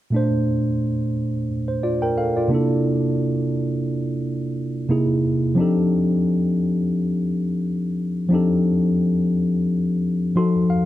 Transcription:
0.10 A#2 A3 D4
0.16 C5
1.68 C5
1.83 F4 D5
2.02 A#4 G5
2.18 A4 F5
2.37 F4 D5
2.48 C3 A#3 D4
2.53 E4 A4
4.88 C3 A#3 D#4 E4 G#4
5.55 F3 C4 D4 D#4
5.60 G4 A4
8.29 F3 C4 D4 D#4
8.34 G4 A4
10.35 F3 D#4 F#4 A4 C6
10.70 F5

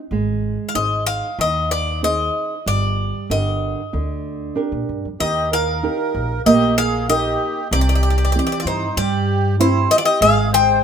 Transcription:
0.11 G#1 G#3
0.69 F5
0.74 G#1 D#4 G#4 C5 D#5
1.06 F5
1.39 D#2 D#3 D#5
1.71 D5
2.03 D#4 G#4 C5 D#5
2.66 G1 G3 D5
3.30 G1 D3 G4 A#4 D#5
3.93 D2 D3
4.55 D4 G4 A#4
4.72 A#2
4.89 G2
5.05 F2
5.20 D#2 D#3 G4 D#5
5.51 A#4 F5
5.83 D#4 G4 A#4
6.15 A#1
6.45 A#1 A#3 G4 D#5
6.77 G#4 F5
7.09 D#4 G4 A#4 D#5
7.71 C2 C3 G4 D5
7.81 D5
7.89 D5
7.95 D5
8.03 D5
8.10 D5
8.18 D5
8.25 D5
8.32 E3 C4 G4 D5
8.39 D5
8.47 D5
8.52 D5
8.60 F4 D5
8.65 G2 D#4 C5
8.97 G2 G3 G4 D5
9.59 C4 E4 G4 C5
9.91 G4 D#5
9.96 F4 D5
10.03 G4 D#5
10.21 G#1 G#3 G#4 F5
10.52 C5 G5

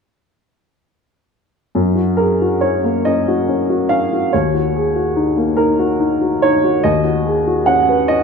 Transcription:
1.75 F#2
1.95 F#4
2.17 G#4 A#4
2.42 F#4
2.61 C#4 C#5
2.84 A#3
3.05 C#4 D#5
3.28 F#4
3.48 C#4
3.70 F#4
3.89 C#4 F5
4.13 F#4
4.33 D#2 C#5
4.54 F#4
4.76 G#4
4.96 F#4
5.16 D#4
5.37 A#3
5.57 D#4 A#4
5.79 F#4
6.00 D#4
6.21 F#4
6.42 D#4 C#5
6.64 F#4
6.84 D#2 D#5
7.04 F#4
7.26 G#4
7.47 F#4
7.66 C#4 F#5
7.89 B4
8.08 C#4 D#5

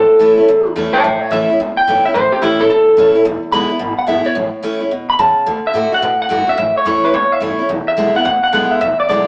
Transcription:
Already playing: A2 A4
0.10 muted upright bass stroke
0.19 E2 E3 A3 C#4 E4
0.37 E2 C#4 E4
0.48 E2
0.67 E2
0.76 E2 E3 A3 C#4 E4
0.93 C#4 E4 C#5 A5, muted upright bass stroke
1.03 A1 A2 E5 G5
1.21 C#5 E5, muted upright bass stroke
1.31 A1 E3 A3 C#4 E4 E5
1.50 C#4 E4, muted upright bass stroke
1.60 C#2 E2
1.77 G5, muted upright bass stroke
1.87 F#1 E3 A3 C#4 E4
2.05 C#4 E4 E5, muted upright bass stroke
2.14 A1 A2 C5
2.32 G4, muted upright bass stroke
2.42 E2 E3 A3 C#4 E4
2.59 E2 C#4 E4 A4
2.70 E2 A4
2.88 E2
2.97 E2 E3 A3 C#4 E4
3.15 C#4 E4, muted upright bass stroke
3.25 E1 E2
3.43 muted upright bass stroke
3.52 E1 D3 G#3 B3 E4 B5
3.69 B3 E4, muted upright bass stroke
3.79 G#1 B2
3.98 F#5, muted upright bass stroke
4.07 G#1 D3 G#3 B3 E4 E5
4.25 B3 E4 C#5, muted upright bass stroke
4.35 A1 A2
4.54 muted upright bass stroke
4.63 E2 E3 A3 C#4 E4
4.81 E2 C#4 E4
4.91 E2 B2
5.09 E2 B5
5.19 E2 C#3 A5
5.37 muted upright bass stroke
5.46 D2 D3
5.65 E5, muted upright bass stroke
5.73 A2 D3 A3 D4 F#4
5.92 D4 F#4 F#5, muted upright bass stroke
6.02 A2 B2
6.21 F#5, muted upright bass stroke
6.29 G1 D3 A3 D4 F#4
6.47 D4 F#4 E5, muted upright bass stroke
6.57 A1 A2 E5
6.76 C#5, muted upright bass stroke
6.85 E2 E3 A3 C#4 E4 C#5
7.04 C#4 E4 B4, muted upright bass stroke
7.14 C#2 E2 C#5
7.32 E5, muted upright bass stroke
7.40 G1 E3 A3 C#4 E4 C#5
7.59 C#4 E4, muted upright bass stroke
7.69 E1 E2
7.88 E5, muted upright bass stroke
7.97 B1 D3 G#3 B3 E4
8.15 B3 E4 F#5, muted upright bass stroke
8.25 D2 B2 F#5
8.44 F#5, muted upright bass stroke
8.53 B1 D3 G#3 B3 E4 F#5
8.71 E5, muted upright bass stroke
8.81 E1 E2 E5
9.00 D5, muted upright bass stroke
9.09 B1 D3 G#3 B3 E4 D5

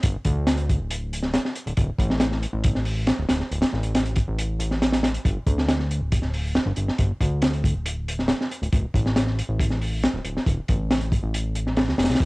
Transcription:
0.03 G1, kick, closed hi-hat
0.25 D2, kick, closed hi-hat
0.47 snare, closed hi-hat
0.57 closed hi-hat
0.69 kick, closed hi-hat
0.79 D1
0.90 closed hi-hat
1.13 closed hi-hat
1.23 snare
1.34 snare, closed hi-hat
1.45 snare
1.55 closed hi-hat
1.66 D1, closed hi-hat
1.77 D1, kick, closed hi-hat
1.98 A1, kick, closed hi-hat
2.10 snare
2.20 snare, closed hi-hat
2.32 snare
2.43 closed hi-hat
2.53 A1
2.64 kick, closed hi-hat
2.75 snare
2.85 open hi-hat
3.07 snare, closed hi-hat
3.19 D1
3.29 D1, snare, closed hi-hat
3.40 snare
3.51 D1, closed hi-hat
3.62 snare, closed hi-hat
3.73 A1, snare
3.83 closed hi-hat
3.95 snare, closed hi-hat
4.05 closed hi-hat
4.16 kick, closed hi-hat
4.28 A1
4.39 closed hi-hat
4.59 A1, closed hi-hat
4.71 snare
4.82 snare, closed hi-hat
4.92 snare, closed hi-hat
5.03 snare, closed hi-hat
5.14 closed hi-hat
5.25 G1, kick, closed hi-hat
5.46 D2, kick, closed hi-hat
5.58 snare
5.68 snare, closed hi-hat
5.79 snare
5.91 closed hi-hat
6.01 D1
6.12 kick, closed hi-hat
6.22 snare
6.34 open hi-hat
6.55 snare, closed hi-hat
6.66 G1
6.76 G1, closed hi-hat
6.88 snare
6.98 G1, kick, closed hi-hat
7.21 D2, kick, closed hi-hat
7.42 snare, closed hi-hat
7.53 closed hi-hat
7.64 kick, closed hi-hat
7.74 D1
7.86 closed hi-hat
8.08 closed hi-hat
8.19 snare
8.28 snare, closed hi-hat
8.41 snare
8.51 closed hi-hat
8.62 D1, closed hi-hat
8.73 D1, kick, closed hi-hat
8.94 A1, kick, closed hi-hat
9.06 snare
9.16 snare, closed hi-hat
9.27 snare
9.39 closed hi-hat
9.49 A1
9.59 kick, closed hi-hat
9.70 snare
9.81 open hi-hat
10.03 snare, closed hi-hat
10.14 D1
10.24 D1, closed hi-hat
10.37 snare
10.46 D1, kick, closed hi-hat
10.68 A1, kick, closed hi-hat
10.90 snare, closed hi-hat
11.01 closed hi-hat
11.12 kick, closed hi-hat
11.23 A1
11.34 closed hi-hat
11.55 closed hi-hat
11.67 snare
11.76 snare, closed hi-hat
11.88 D2, snare
11.98 F1, snare, closed hi-hat
12.04 snare, closed hi-hat
12.09 C2, snare, closed hi-hat
12.15 snare, closed hi-hat
12.20 G1, kick, closed hi-hat

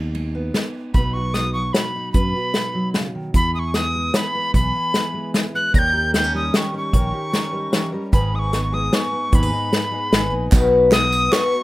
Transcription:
Already playing: D#2 G#2 B3 D#4
0.15 G#3, ride
0.35 B3
0.54 D#3, snare, ride
0.94 B1 B2 F#3 D#4 F#4 B4 B5, kick, closed hi-hat
1.13 F#4 C#6
1.34 D#4 D#6, snare, closed hi-hat
1.53 F#3 C#6
1.73 F#4 B5, snare, closed hi-hat
1.96 D#4
2.12 F#2 B2 B4 B5, kick, closed hi-hat
2.36 F#4
2.54 D#4, snare, closed hi-hat
2.75 F#3
2.94 C#3, snare, closed hi-hat
3.15 D#3
3.34 E2 E3 G#4 B5, kick, closed hi-hat
3.55 E4 D#6
3.59 C#6
3.74 B3 D#6, snare, closed hi-hat
3.95 G#3
4.14 E4 B5, snare, closed hi-hat
4.35 B3
4.54 B1 E3 G#4 B5, kick, closed hi-hat
4.76 E4
4.94 B3, snare, closed hi-hat
5.14 G#3
5.34 E4, snare, closed hi-hat
5.55 B3 F#6
5.73 D#2 D#3 G3 C#4 D#4 A#4 A#6, kick, closed hi-hat
5.79 G6
5.93 G4
6.13 G3 B3 C#4 D#4 A#4 G6, snare, closed hi-hat
6.24 C#4
6.33 G3 C#4 D#4 A#4 D#6
6.54 G3 C#4 D#4 G4 A#4 C#6, snare, closed hi-hat
6.72 C#4 D#4 A#4
6.77 C#6
6.93 A#1 D#3 G3 C#4 D#4 A#4, kick, closed hi-hat
7.14 G4
7.32 G3 C#4 D#4 A#4, snare, closed hi-hat
7.52 G3 C#4 D#4 A#4
7.72 E3 G3 C#4 D#4 A#4, snare, closed hi-hat
7.92 G3 C#4 D#4 A#4
8.12 G#1 G#2 D#3 G#3 B3 D#4 G#4 B4 B5, kick, closed hi-hat
8.34 D#4 D#6
8.39 C#6
8.52 G#3 B3 D#4 G#4, snare, closed hi-hat
8.73 G#3 B3 D#4 G#4 D#6
8.91 G#3 B3 D#4 G#4 C#6, snare, closed hi-hat
9.13 B3
9.32 D#2 G#2 D#3 G#3 B3 D#4 G#4 B5, kick, closed hi-hat
9.43 B4
9.53 D#4
9.72 G#3 B3 D#4 G#4, snare, closed hi-hat
9.91 G#3 B3 D#4 G#4
10.12 G#1 G#3 B3 D#4 G#4, snare, closed hi-hat
10.31 A#1 B3
10.52 B1 B2 D#3 F#3 B3 D#4 B4, kick, clap, closed hi-hat, tambourine
10.92 B4 D#6, snare, clap, closed hi-hat
11.12 clap, tambourine
11.32 F#3 B3 D#4 B4 C#6, snare, clap, closed hi-hat
11.51 F#3 B3 D#4 B4, tambourine

